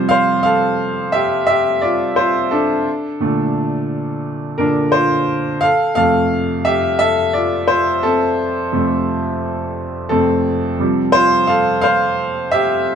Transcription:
0.00 0.21 C3 medium
0.00 0.22 F3 medium
0.00 0.22 G3 medium
0.00 1.83 F4 medium
0.00 0.11 C5 medium
0.09 0.43 C5 medium
0.09 0.41 F5 loud
0.43 1.10 A4 medium
0.43 1.09 F5 loud
1.12 1.46 G4 medium
1.12 1.45 E5 loud
1.47 1.81 G4 medium
1.47 1.83 E5 loud
1.81 2.15 F4 medium
1.81 2.18 D5 medium
2.16 2.50 F4 medium
2.16 2.52 C5 medium
2.51 3.17 D4 medium
2.51 3.16 A4 medium
3.20 4.20 A#2 medium
3.20 4.20 D3 medium
3.20 4.21 A3 medium
4.58 4.90 A#2 medium
4.58 4.90 D3 medium
4.58 4.92 D4 medium
4.58 4.90 A4 medium
4.58 4.94 A#4 medium
4.92 5.59 F4 medium
4.92 5.64 C5 loud
5.61 5.95 A4 medium
5.61 5.94 F5 loud
5.95 6.42 F2 medium
5.95 6.43 C3 soft
5.95 6.43 A3 medium
5.95 6.62 A4 medium
5.95 6.67 F5 loud
6.65 6.74 G4 medium
6.65 6.73 E5 loud
6.99 7.33 A4 medium
6.99 7.35 E5 loud
7.33 7.67 F4 medium
7.33 7.70 D5 medium
7.67 8.01 F4 medium
7.67 8.04 C5 loud
8.03 8.69 C4 medium
8.03 8.68 A4 loud
8.72 9.18 F2 medium
8.72 9.19 C3 medium
8.72 9.19 A3 medium
10.09 10.41 F2 medium
10.09 10.42 C3 soft
10.09 10.42 A3 medium
10.09 11.11 C4 medium
10.09 11.17 A4 loud
10.79 11.25 C3 medium
10.79 11.26 F3 medium
10.79 11.26 G3 medium
11.12 11.46 F4 medium
11.12 11.45 C5 loud
11.47 11.81 A4 medium
11.47 11.80 F5 loud
11.81 12.49 C5 medium
11.81 12.47 F5 loud
12.51 12.95 G4 medium
12.51 12.95 E5 loud

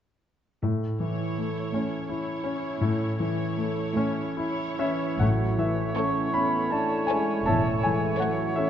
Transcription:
0.63 1.59 A2 soft
0.63 2.78 A2 soft
1.00 1.59 E3 soft
1.00 2.08 E4 soft
1.00 2.07 C#5 soft
1.38 1.95 A3 soft
1.74 2.67 A2 soft
1.74 2.31 C#4 soft
2.09 2.67 E4 soft
2.09 3.17 E4 soft
2.09 3.17 C#5 soft
2.44 3.03 C#4 soft
2.81 5.17 A2 soft
2.81 3.81 A2 soft
3.20 3.81 E3 soft
3.20 4.35 E4 soft
3.20 4.35 C#5 soft
3.57 4.20 A3 soft
3.96 5.05 A2 soft
3.96 4.63 C#4 soft
4.37 5.05 E4 soft
4.37 5.20 E4 soft
4.37 5.19 C#5 soft
4.79 5.17 E3 soft
4.79 5.20 C#4 soft
4.79 5.18 E5 soft
5.19 6.13 A1 soft
5.19 6.30 A2 soft
5.19 7.43 A2 soft
5.19 6.13 A2 soft
5.19 5.59 F#3 soft
5.19 8.70 A3 soft
5.19 8.70 E4 soft
5.19 8.70 C#5 soft
5.19 5.56 F#5 soft
5.19 5.59 F#5 soft
5.58 5.96 E3 soft
5.58 6.19 E3 soft
5.58 5.96 E5 soft
5.58 5.94 E5 soft
5.95 6.56 A3 soft
5.95 6.33 C#4 soft
5.95 6.24 E4 soft
5.95 6.25 A4 soft
5.95 6.24 C#5 soft
5.95 6.33 C#6 soft
5.95 6.31 C#6 soft
6.33 6.70 B3 soft
6.33 6.94 C#4 soft
6.33 6.71 B5 soft
6.33 6.69 B5 soft
6.71 7.09 A3 soft
6.71 7.09 D4 soft
6.71 7.09 A5 soft
6.71 7.06 A5 soft
7.07 7.47 G#3 soft
7.07 7.69 C#4 soft
7.07 7.37 E4 soft
7.07 7.37 A4 soft
7.07 7.37 C#5 soft
7.07 7.43 G#5 soft
7.07 7.46 G#5 soft
7.45 8.36 E1 soft
7.45 8.36 E2 soft
7.45 8.70 A2 soft
7.45 7.84 A3 soft
7.45 7.81 C#5 soft
7.45 7.81 E5 soft
7.45 7.83 A5 soft
7.45 7.81 A5 soft
7.83 8.44 E3 soft
7.83 8.20 G#3 soft
7.83 8.20 G#5 soft
7.83 8.18 G#5 soft
8.19 8.56 F#3 soft
8.19 8.70 A3 soft
8.19 8.47 E4 soft
8.19 8.47 A4 soft
8.19 8.48 C#5 soft
8.19 8.54 F#5 soft
8.19 8.56 F#5 soft
8.55 8.70 E3 soft
8.55 8.70 C#4 soft
8.55 8.70 A4 soft
8.55 8.70 C#5 soft
8.55 8.70 E5 soft

